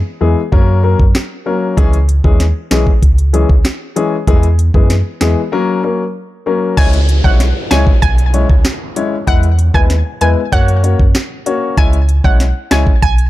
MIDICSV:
0, 0, Header, 1, 6, 480
1, 0, Start_track
1, 0, Tempo, 625000
1, 1362, Time_signature, 4, 2, 24, 8
1, 10214, End_track
2, 0, Start_track
2, 0, Title_t, "Synth pluck"
2, 0, Program_c, 0, 84
2, 5202, Note_on_c, 0, 80, 105
2, 5277, Note_off_c, 0, 80, 0
2, 5562, Note_on_c, 0, 78, 78
2, 5637, Note_off_c, 0, 78, 0
2, 5919, Note_on_c, 0, 80, 91
2, 5995, Note_off_c, 0, 80, 0
2, 6161, Note_on_c, 0, 80, 95
2, 6500, Note_off_c, 0, 80, 0
2, 7123, Note_on_c, 0, 78, 102
2, 7198, Note_off_c, 0, 78, 0
2, 7484, Note_on_c, 0, 80, 82
2, 7558, Note_off_c, 0, 80, 0
2, 7844, Note_on_c, 0, 80, 78
2, 7918, Note_off_c, 0, 80, 0
2, 8083, Note_on_c, 0, 78, 108
2, 8421, Note_off_c, 0, 78, 0
2, 9044, Note_on_c, 0, 80, 98
2, 9118, Note_off_c, 0, 80, 0
2, 9404, Note_on_c, 0, 78, 77
2, 9478, Note_off_c, 0, 78, 0
2, 9766, Note_on_c, 0, 80, 79
2, 9839, Note_off_c, 0, 80, 0
2, 10003, Note_on_c, 0, 80, 111
2, 10214, Note_off_c, 0, 80, 0
2, 10214, End_track
3, 0, Start_track
3, 0, Title_t, "Grand piano"
3, 0, Program_c, 1, 0
3, 159, Note_on_c, 1, 52, 79
3, 160, Note_on_c, 1, 56, 68
3, 162, Note_on_c, 1, 59, 72
3, 164, Note_on_c, 1, 68, 86
3, 300, Note_off_c, 1, 52, 0
3, 301, Note_off_c, 1, 56, 0
3, 302, Note_off_c, 1, 59, 0
3, 302, Note_off_c, 1, 68, 0
3, 399, Note_on_c, 1, 54, 92
3, 399, Note_on_c, 1, 58, 85
3, 402, Note_on_c, 1, 61, 89
3, 403, Note_on_c, 1, 70, 99
3, 622, Note_off_c, 1, 54, 0
3, 622, Note_off_c, 1, 58, 0
3, 623, Note_off_c, 1, 61, 0
3, 624, Note_off_c, 1, 70, 0
3, 639, Note_on_c, 1, 54, 76
3, 640, Note_on_c, 1, 58, 68
3, 642, Note_on_c, 1, 61, 65
3, 643, Note_on_c, 1, 70, 86
3, 780, Note_off_c, 1, 54, 0
3, 781, Note_off_c, 1, 58, 0
3, 782, Note_off_c, 1, 61, 0
3, 782, Note_off_c, 1, 70, 0
3, 1120, Note_on_c, 1, 54, 75
3, 1121, Note_on_c, 1, 58, 68
3, 1122, Note_on_c, 1, 61, 72
3, 1125, Note_on_c, 1, 70, 87
3, 1342, Note_off_c, 1, 54, 0
3, 1342, Note_off_c, 1, 58, 0
3, 1343, Note_off_c, 1, 61, 0
3, 1344, Note_off_c, 1, 70, 0
3, 1358, Note_on_c, 1, 52, 93
3, 1361, Note_on_c, 1, 56, 83
3, 1362, Note_on_c, 1, 61, 87
3, 1363, Note_on_c, 1, 68, 101
3, 1500, Note_off_c, 1, 52, 0
3, 1501, Note_off_c, 1, 56, 0
3, 1501, Note_off_c, 1, 61, 0
3, 1502, Note_off_c, 1, 68, 0
3, 1720, Note_on_c, 1, 52, 76
3, 1722, Note_on_c, 1, 56, 70
3, 1724, Note_on_c, 1, 61, 68
3, 1725, Note_on_c, 1, 68, 83
3, 1861, Note_off_c, 1, 52, 0
3, 1861, Note_off_c, 1, 56, 0
3, 1862, Note_off_c, 1, 61, 0
3, 1863, Note_off_c, 1, 68, 0
3, 2079, Note_on_c, 1, 52, 76
3, 2082, Note_on_c, 1, 56, 74
3, 2083, Note_on_c, 1, 61, 70
3, 2085, Note_on_c, 1, 68, 89
3, 2220, Note_off_c, 1, 52, 0
3, 2221, Note_off_c, 1, 56, 0
3, 2222, Note_off_c, 1, 61, 0
3, 2223, Note_off_c, 1, 68, 0
3, 2560, Note_on_c, 1, 52, 77
3, 2561, Note_on_c, 1, 56, 66
3, 2563, Note_on_c, 1, 61, 68
3, 2564, Note_on_c, 1, 68, 85
3, 2700, Note_off_c, 1, 52, 0
3, 2701, Note_off_c, 1, 56, 0
3, 2702, Note_off_c, 1, 61, 0
3, 2703, Note_off_c, 1, 68, 0
3, 3041, Note_on_c, 1, 52, 79
3, 3042, Note_on_c, 1, 56, 73
3, 3044, Note_on_c, 1, 61, 71
3, 3044, Note_on_c, 1, 68, 83
3, 3181, Note_off_c, 1, 52, 0
3, 3181, Note_off_c, 1, 56, 0
3, 3182, Note_off_c, 1, 61, 0
3, 3183, Note_off_c, 1, 68, 0
3, 3282, Note_on_c, 1, 52, 96
3, 3283, Note_on_c, 1, 56, 88
3, 3284, Note_on_c, 1, 59, 84
3, 3286, Note_on_c, 1, 68, 106
3, 3421, Note_off_c, 1, 52, 0
3, 3422, Note_off_c, 1, 56, 0
3, 3423, Note_off_c, 1, 59, 0
3, 3424, Note_off_c, 1, 68, 0
3, 3641, Note_on_c, 1, 52, 77
3, 3643, Note_on_c, 1, 56, 69
3, 3644, Note_on_c, 1, 59, 71
3, 3646, Note_on_c, 1, 68, 84
3, 3781, Note_off_c, 1, 52, 0
3, 3782, Note_off_c, 1, 56, 0
3, 3782, Note_off_c, 1, 59, 0
3, 3784, Note_off_c, 1, 68, 0
3, 4000, Note_on_c, 1, 52, 78
3, 4001, Note_on_c, 1, 56, 74
3, 4003, Note_on_c, 1, 59, 72
3, 4004, Note_on_c, 1, 68, 85
3, 4141, Note_off_c, 1, 52, 0
3, 4141, Note_off_c, 1, 56, 0
3, 4142, Note_off_c, 1, 59, 0
3, 4143, Note_off_c, 1, 68, 0
3, 4239, Note_on_c, 1, 54, 96
3, 4241, Note_on_c, 1, 58, 88
3, 4243, Note_on_c, 1, 61, 88
3, 4244, Note_on_c, 1, 70, 103
3, 4462, Note_off_c, 1, 54, 0
3, 4462, Note_off_c, 1, 58, 0
3, 4463, Note_off_c, 1, 61, 0
3, 4464, Note_off_c, 1, 70, 0
3, 4481, Note_on_c, 1, 54, 73
3, 4483, Note_on_c, 1, 58, 70
3, 4484, Note_on_c, 1, 61, 67
3, 4485, Note_on_c, 1, 70, 81
3, 4621, Note_off_c, 1, 54, 0
3, 4622, Note_off_c, 1, 58, 0
3, 4623, Note_off_c, 1, 61, 0
3, 4623, Note_off_c, 1, 70, 0
3, 4961, Note_on_c, 1, 54, 79
3, 4963, Note_on_c, 1, 58, 69
3, 4965, Note_on_c, 1, 61, 73
3, 4966, Note_on_c, 1, 70, 83
3, 5183, Note_off_c, 1, 54, 0
3, 5184, Note_off_c, 1, 58, 0
3, 5184, Note_off_c, 1, 61, 0
3, 5185, Note_off_c, 1, 70, 0
3, 5201, Note_on_c, 1, 56, 93
3, 5203, Note_on_c, 1, 61, 87
3, 5205, Note_on_c, 1, 64, 84
3, 5206, Note_on_c, 1, 73, 103
3, 5341, Note_off_c, 1, 56, 0
3, 5342, Note_off_c, 1, 61, 0
3, 5343, Note_off_c, 1, 64, 0
3, 5344, Note_off_c, 1, 73, 0
3, 5560, Note_on_c, 1, 56, 76
3, 5562, Note_on_c, 1, 61, 71
3, 5562, Note_on_c, 1, 64, 73
3, 5564, Note_on_c, 1, 73, 86
3, 5701, Note_off_c, 1, 56, 0
3, 5702, Note_off_c, 1, 61, 0
3, 5702, Note_off_c, 1, 64, 0
3, 5703, Note_off_c, 1, 73, 0
3, 5921, Note_on_c, 1, 56, 79
3, 5923, Note_on_c, 1, 61, 72
3, 5925, Note_on_c, 1, 64, 70
3, 5926, Note_on_c, 1, 73, 87
3, 6061, Note_off_c, 1, 56, 0
3, 6062, Note_off_c, 1, 61, 0
3, 6063, Note_off_c, 1, 64, 0
3, 6064, Note_off_c, 1, 73, 0
3, 6401, Note_on_c, 1, 56, 77
3, 6403, Note_on_c, 1, 61, 70
3, 6404, Note_on_c, 1, 64, 69
3, 6405, Note_on_c, 1, 73, 85
3, 6541, Note_off_c, 1, 56, 0
3, 6542, Note_off_c, 1, 61, 0
3, 6543, Note_off_c, 1, 64, 0
3, 6543, Note_off_c, 1, 73, 0
3, 6882, Note_on_c, 1, 56, 75
3, 6883, Note_on_c, 1, 61, 73
3, 6884, Note_on_c, 1, 64, 70
3, 6885, Note_on_c, 1, 73, 84
3, 7021, Note_off_c, 1, 56, 0
3, 7022, Note_off_c, 1, 61, 0
3, 7023, Note_off_c, 1, 64, 0
3, 7023, Note_off_c, 1, 73, 0
3, 7118, Note_on_c, 1, 56, 92
3, 7120, Note_on_c, 1, 59, 84
3, 7121, Note_on_c, 1, 64, 85
3, 7122, Note_on_c, 1, 71, 105
3, 7260, Note_off_c, 1, 56, 0
3, 7261, Note_off_c, 1, 59, 0
3, 7261, Note_off_c, 1, 64, 0
3, 7262, Note_off_c, 1, 71, 0
3, 7479, Note_on_c, 1, 56, 77
3, 7481, Note_on_c, 1, 59, 71
3, 7483, Note_on_c, 1, 64, 72
3, 7484, Note_on_c, 1, 71, 83
3, 7620, Note_off_c, 1, 56, 0
3, 7621, Note_off_c, 1, 59, 0
3, 7622, Note_off_c, 1, 64, 0
3, 7623, Note_off_c, 1, 71, 0
3, 7840, Note_on_c, 1, 56, 79
3, 7842, Note_on_c, 1, 59, 74
3, 7843, Note_on_c, 1, 64, 72
3, 7845, Note_on_c, 1, 71, 87
3, 7981, Note_off_c, 1, 56, 0
3, 7982, Note_off_c, 1, 59, 0
3, 7982, Note_off_c, 1, 64, 0
3, 7983, Note_off_c, 1, 71, 0
3, 8079, Note_on_c, 1, 58, 97
3, 8082, Note_on_c, 1, 61, 89
3, 8083, Note_on_c, 1, 66, 83
3, 8084, Note_on_c, 1, 73, 107
3, 8302, Note_off_c, 1, 58, 0
3, 8303, Note_off_c, 1, 61, 0
3, 8304, Note_off_c, 1, 66, 0
3, 8304, Note_off_c, 1, 73, 0
3, 8319, Note_on_c, 1, 58, 76
3, 8321, Note_on_c, 1, 61, 68
3, 8322, Note_on_c, 1, 66, 69
3, 8324, Note_on_c, 1, 73, 86
3, 8460, Note_off_c, 1, 58, 0
3, 8461, Note_off_c, 1, 61, 0
3, 8462, Note_off_c, 1, 66, 0
3, 8463, Note_off_c, 1, 73, 0
3, 8801, Note_on_c, 1, 58, 77
3, 8804, Note_on_c, 1, 61, 72
3, 8804, Note_on_c, 1, 66, 75
3, 8806, Note_on_c, 1, 73, 84
3, 9023, Note_off_c, 1, 58, 0
3, 9024, Note_off_c, 1, 61, 0
3, 9024, Note_off_c, 1, 66, 0
3, 9025, Note_off_c, 1, 73, 0
3, 9041, Note_on_c, 1, 56, 94
3, 9043, Note_on_c, 1, 61, 86
3, 9044, Note_on_c, 1, 64, 89
3, 9046, Note_on_c, 1, 73, 109
3, 9181, Note_off_c, 1, 56, 0
3, 9182, Note_off_c, 1, 61, 0
3, 9182, Note_off_c, 1, 64, 0
3, 9183, Note_off_c, 1, 73, 0
3, 9400, Note_on_c, 1, 56, 77
3, 9401, Note_on_c, 1, 61, 69
3, 9402, Note_on_c, 1, 64, 69
3, 9404, Note_on_c, 1, 73, 84
3, 9540, Note_off_c, 1, 56, 0
3, 9541, Note_off_c, 1, 61, 0
3, 9542, Note_off_c, 1, 64, 0
3, 9543, Note_off_c, 1, 73, 0
3, 9759, Note_on_c, 1, 56, 78
3, 9761, Note_on_c, 1, 61, 74
3, 9762, Note_on_c, 1, 64, 74
3, 9764, Note_on_c, 1, 73, 87
3, 9900, Note_off_c, 1, 56, 0
3, 9901, Note_off_c, 1, 61, 0
3, 9901, Note_off_c, 1, 64, 0
3, 9903, Note_off_c, 1, 73, 0
3, 10214, End_track
4, 0, Start_track
4, 0, Title_t, "Sub bass"
4, 0, Program_c, 2, 38
4, 162, Note_on_c, 2, 40, 91
4, 271, Note_off_c, 2, 40, 0
4, 403, Note_on_c, 2, 42, 108
4, 732, Note_off_c, 2, 42, 0
4, 764, Note_on_c, 2, 42, 83
4, 872, Note_off_c, 2, 42, 0
4, 1363, Note_on_c, 2, 37, 113
4, 1692, Note_off_c, 2, 37, 0
4, 1723, Note_on_c, 2, 39, 92
4, 1940, Note_off_c, 2, 39, 0
4, 2083, Note_on_c, 2, 35, 91
4, 2191, Note_off_c, 2, 35, 0
4, 2323, Note_on_c, 2, 37, 100
4, 2652, Note_off_c, 2, 37, 0
4, 2685, Note_on_c, 2, 37, 89
4, 2792, Note_off_c, 2, 37, 0
4, 3283, Note_on_c, 2, 40, 109
4, 3612, Note_off_c, 2, 40, 0
4, 3643, Note_on_c, 2, 42, 94
4, 3860, Note_off_c, 2, 42, 0
4, 4003, Note_on_c, 2, 40, 91
4, 4111, Note_off_c, 2, 40, 0
4, 5203, Note_on_c, 2, 37, 109
4, 5532, Note_off_c, 2, 37, 0
4, 5562, Note_on_c, 2, 35, 99
4, 5780, Note_off_c, 2, 35, 0
4, 5923, Note_on_c, 2, 37, 95
4, 6031, Note_off_c, 2, 37, 0
4, 6163, Note_on_c, 2, 35, 100
4, 6492, Note_off_c, 2, 35, 0
4, 6524, Note_on_c, 2, 37, 91
4, 6632, Note_off_c, 2, 37, 0
4, 7123, Note_on_c, 2, 40, 115
4, 7452, Note_off_c, 2, 40, 0
4, 7483, Note_on_c, 2, 39, 92
4, 7700, Note_off_c, 2, 39, 0
4, 7843, Note_on_c, 2, 40, 101
4, 7951, Note_off_c, 2, 40, 0
4, 8083, Note_on_c, 2, 42, 115
4, 8412, Note_off_c, 2, 42, 0
4, 8444, Note_on_c, 2, 42, 89
4, 8552, Note_off_c, 2, 42, 0
4, 9043, Note_on_c, 2, 37, 111
4, 9372, Note_off_c, 2, 37, 0
4, 9402, Note_on_c, 2, 35, 97
4, 9620, Note_off_c, 2, 35, 0
4, 9764, Note_on_c, 2, 37, 96
4, 9872, Note_off_c, 2, 37, 0
4, 10004, Note_on_c, 2, 35, 100
4, 10214, Note_off_c, 2, 35, 0
4, 10214, End_track
5, 0, Start_track
5, 0, Title_t, "Downlifter"
5, 0, Program_c, 3, 103
5, 5203, Note_on_c, 3, 60, 87
5, 9043, Note_off_c, 3, 60, 0
5, 10214, End_track
6, 0, Start_track
6, 0, Title_t, "Drums"
6, 403, Note_on_c, 9, 36, 87
6, 480, Note_off_c, 9, 36, 0
6, 764, Note_on_c, 9, 36, 95
6, 841, Note_off_c, 9, 36, 0
6, 882, Note_on_c, 9, 38, 104
6, 891, Note_on_c, 9, 37, 85
6, 959, Note_off_c, 9, 38, 0
6, 968, Note_off_c, 9, 37, 0
6, 1363, Note_on_c, 9, 36, 104
6, 1364, Note_on_c, 9, 42, 69
6, 1440, Note_off_c, 9, 36, 0
6, 1441, Note_off_c, 9, 42, 0
6, 1485, Note_on_c, 9, 42, 49
6, 1561, Note_off_c, 9, 42, 0
6, 1603, Note_on_c, 9, 42, 63
6, 1680, Note_off_c, 9, 42, 0
6, 1723, Note_on_c, 9, 36, 100
6, 1799, Note_off_c, 9, 36, 0
6, 1843, Note_on_c, 9, 38, 66
6, 1844, Note_on_c, 9, 42, 88
6, 1920, Note_off_c, 9, 38, 0
6, 1920, Note_off_c, 9, 42, 0
6, 2082, Note_on_c, 9, 38, 110
6, 2083, Note_on_c, 9, 42, 76
6, 2091, Note_on_c, 9, 37, 88
6, 2159, Note_off_c, 9, 38, 0
6, 2159, Note_off_c, 9, 42, 0
6, 2168, Note_off_c, 9, 37, 0
6, 2202, Note_on_c, 9, 36, 92
6, 2278, Note_off_c, 9, 36, 0
6, 2323, Note_on_c, 9, 36, 87
6, 2324, Note_on_c, 9, 42, 78
6, 2400, Note_off_c, 9, 36, 0
6, 2401, Note_off_c, 9, 42, 0
6, 2445, Note_on_c, 9, 42, 55
6, 2522, Note_off_c, 9, 42, 0
6, 2563, Note_on_c, 9, 42, 73
6, 2640, Note_off_c, 9, 42, 0
6, 2684, Note_on_c, 9, 36, 95
6, 2761, Note_off_c, 9, 36, 0
6, 2801, Note_on_c, 9, 38, 104
6, 2802, Note_on_c, 9, 42, 71
6, 2810, Note_on_c, 9, 37, 83
6, 2878, Note_off_c, 9, 38, 0
6, 2879, Note_off_c, 9, 42, 0
6, 2887, Note_off_c, 9, 37, 0
6, 3044, Note_on_c, 9, 42, 85
6, 3121, Note_off_c, 9, 42, 0
6, 3283, Note_on_c, 9, 36, 104
6, 3284, Note_on_c, 9, 42, 69
6, 3359, Note_off_c, 9, 36, 0
6, 3360, Note_off_c, 9, 42, 0
6, 3403, Note_on_c, 9, 42, 47
6, 3480, Note_off_c, 9, 42, 0
6, 3524, Note_on_c, 9, 42, 65
6, 3600, Note_off_c, 9, 42, 0
6, 3643, Note_on_c, 9, 36, 100
6, 3719, Note_off_c, 9, 36, 0
6, 3763, Note_on_c, 9, 38, 69
6, 3763, Note_on_c, 9, 42, 89
6, 3840, Note_off_c, 9, 38, 0
6, 3840, Note_off_c, 9, 42, 0
6, 4001, Note_on_c, 9, 38, 113
6, 4001, Note_on_c, 9, 42, 78
6, 4010, Note_on_c, 9, 37, 86
6, 4077, Note_off_c, 9, 38, 0
6, 4078, Note_off_c, 9, 42, 0
6, 4086, Note_off_c, 9, 37, 0
6, 5203, Note_on_c, 9, 36, 106
6, 5203, Note_on_c, 9, 42, 68
6, 5203, Note_on_c, 9, 49, 94
6, 5280, Note_off_c, 9, 36, 0
6, 5280, Note_off_c, 9, 42, 0
6, 5280, Note_off_c, 9, 49, 0
6, 5324, Note_on_c, 9, 42, 50
6, 5400, Note_off_c, 9, 42, 0
6, 5443, Note_on_c, 9, 42, 64
6, 5520, Note_off_c, 9, 42, 0
6, 5563, Note_on_c, 9, 36, 102
6, 5640, Note_off_c, 9, 36, 0
6, 5684, Note_on_c, 9, 38, 68
6, 5685, Note_on_c, 9, 42, 91
6, 5761, Note_off_c, 9, 38, 0
6, 5761, Note_off_c, 9, 42, 0
6, 5921, Note_on_c, 9, 38, 113
6, 5922, Note_on_c, 9, 42, 74
6, 5930, Note_on_c, 9, 37, 93
6, 5998, Note_off_c, 9, 38, 0
6, 5999, Note_off_c, 9, 42, 0
6, 6007, Note_off_c, 9, 37, 0
6, 6042, Note_on_c, 9, 36, 95
6, 6119, Note_off_c, 9, 36, 0
6, 6163, Note_on_c, 9, 36, 90
6, 6164, Note_on_c, 9, 42, 76
6, 6240, Note_off_c, 9, 36, 0
6, 6241, Note_off_c, 9, 42, 0
6, 6285, Note_on_c, 9, 42, 55
6, 6362, Note_off_c, 9, 42, 0
6, 6403, Note_on_c, 9, 42, 75
6, 6480, Note_off_c, 9, 42, 0
6, 6524, Note_on_c, 9, 36, 101
6, 6601, Note_off_c, 9, 36, 0
6, 6641, Note_on_c, 9, 38, 110
6, 6642, Note_on_c, 9, 42, 72
6, 6650, Note_on_c, 9, 37, 85
6, 6718, Note_off_c, 9, 38, 0
6, 6719, Note_off_c, 9, 42, 0
6, 6727, Note_off_c, 9, 37, 0
6, 6884, Note_on_c, 9, 42, 89
6, 6960, Note_off_c, 9, 42, 0
6, 7122, Note_on_c, 9, 42, 69
6, 7123, Note_on_c, 9, 36, 108
6, 7199, Note_off_c, 9, 36, 0
6, 7199, Note_off_c, 9, 42, 0
6, 7243, Note_on_c, 9, 42, 47
6, 7320, Note_off_c, 9, 42, 0
6, 7362, Note_on_c, 9, 42, 61
6, 7439, Note_off_c, 9, 42, 0
6, 7482, Note_on_c, 9, 36, 99
6, 7559, Note_off_c, 9, 36, 0
6, 7603, Note_on_c, 9, 38, 66
6, 7603, Note_on_c, 9, 42, 89
6, 7679, Note_off_c, 9, 38, 0
6, 7680, Note_off_c, 9, 42, 0
6, 7841, Note_on_c, 9, 42, 75
6, 7918, Note_off_c, 9, 42, 0
6, 8083, Note_on_c, 9, 36, 88
6, 8083, Note_on_c, 9, 42, 77
6, 8160, Note_off_c, 9, 36, 0
6, 8160, Note_off_c, 9, 42, 0
6, 8205, Note_on_c, 9, 42, 57
6, 8282, Note_off_c, 9, 42, 0
6, 8324, Note_on_c, 9, 42, 75
6, 8401, Note_off_c, 9, 42, 0
6, 8444, Note_on_c, 9, 36, 97
6, 8521, Note_off_c, 9, 36, 0
6, 8562, Note_on_c, 9, 38, 108
6, 8562, Note_on_c, 9, 42, 71
6, 8570, Note_on_c, 9, 37, 88
6, 8638, Note_off_c, 9, 38, 0
6, 8639, Note_off_c, 9, 42, 0
6, 8647, Note_off_c, 9, 37, 0
6, 8803, Note_on_c, 9, 42, 83
6, 8880, Note_off_c, 9, 42, 0
6, 9043, Note_on_c, 9, 36, 104
6, 9043, Note_on_c, 9, 42, 66
6, 9120, Note_off_c, 9, 36, 0
6, 9120, Note_off_c, 9, 42, 0
6, 9163, Note_on_c, 9, 42, 49
6, 9240, Note_off_c, 9, 42, 0
6, 9283, Note_on_c, 9, 42, 62
6, 9359, Note_off_c, 9, 42, 0
6, 9403, Note_on_c, 9, 36, 99
6, 9479, Note_off_c, 9, 36, 0
6, 9524, Note_on_c, 9, 38, 68
6, 9524, Note_on_c, 9, 42, 90
6, 9601, Note_off_c, 9, 38, 0
6, 9601, Note_off_c, 9, 42, 0
6, 9761, Note_on_c, 9, 38, 115
6, 9762, Note_on_c, 9, 42, 75
6, 9770, Note_on_c, 9, 37, 93
6, 9838, Note_off_c, 9, 38, 0
6, 9839, Note_off_c, 9, 42, 0
6, 9847, Note_off_c, 9, 37, 0
6, 9882, Note_on_c, 9, 36, 94
6, 9958, Note_off_c, 9, 36, 0
6, 10003, Note_on_c, 9, 36, 91
6, 10004, Note_on_c, 9, 42, 76
6, 10080, Note_off_c, 9, 36, 0
6, 10081, Note_off_c, 9, 42, 0
6, 10125, Note_on_c, 9, 42, 57
6, 10202, Note_off_c, 9, 42, 0
6, 10214, End_track
0, 0, End_of_file